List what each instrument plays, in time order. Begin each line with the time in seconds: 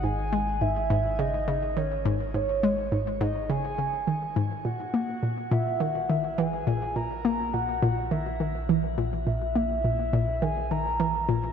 Already playing: analog synth bass G#1
0.03 synth arpeggio sound G#2, soft synth lead G#5
0.33 synth arpeggio sound G#3
0.61 synth arpeggio sound G#2, soft synth lead E5
0.90 synth arpeggio sound G#2
1.19 synth arpeggio sound C#3, soft synth lead D#5
1.48 synth arpeggio sound C#3
1.77 synth arpeggio sound D#3, soft synth lead C#5
2.05 synth arpeggio sound G#2
2.34 synth arpeggio sound G#2, soft synth lead C#5
2.63 synth arpeggio sound G#3
2.92 synth arpeggio sound G#2
3.21 synth arpeggio sound G#2, soft synth lead D#5
3.50 synth arpeggio sound C#3, soft synth lead G#5
3.78 synth arpeggio sound C#3
4.07 synth arpeggio sound D#3
4.36 synth arpeggio sound G#2
4.65 analog synth bass A#1, synth arpeggio sound A#2, soft synth lead F#5
4.94 synth arpeggio sound A#3
5.23 synth arpeggio sound A#2
5.51 synth arpeggio sound A#2, soft synth lead E5
5.80 synth arpeggio sound D#3, soft synth lead F#5
6.10 synth arpeggio sound D#3, soft synth lead E5
6.38 synth arpeggio sound E3, soft synth lead G#5
6.67 synth arpeggio sound A#2
6.96 synth arpeggio sound A#2, soft synth lead A#5
7.25 synth arpeggio sound A#3
7.54 synth arpeggio sound A#2, soft synth lead F#5
7.82 synth arpeggio sound A#2
8.11 synth arpeggio sound D#3, soft synth lead E5
8.40 synth arpeggio sound D#3
8.69 synth arpeggio sound E3
8.98 synth arpeggio sound A#2
9.27 synth arpeggio sound A#2, soft synth lead E5
9.55 synth arpeggio sound A#3
9.84 synth arpeggio sound A#2
10.13 synth arpeggio sound A#2
10.42 synth arpeggio sound D#3, soft synth lead G#5
10.71 synth arpeggio sound D#3, soft synth lead A#5
11.00 synth arpeggio sound E3
11.29 synth arpeggio sound A#2